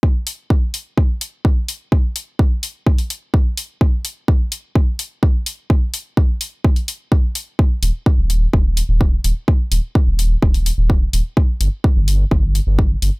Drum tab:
HH |--o---o---o---o-|--o---o--oo---o-|--o---o---o---o-|--o---o--oo---o-|
BD |o---o---o---o---|o---o---o---o---|o---o---o---o---|o---o---o---o---|

HH |--o---o---o---o-|--o---o--oo---o-|--o---o---o---o-|
BD |o---o---o---o---|o---o---o---o---|o---o---o---o---|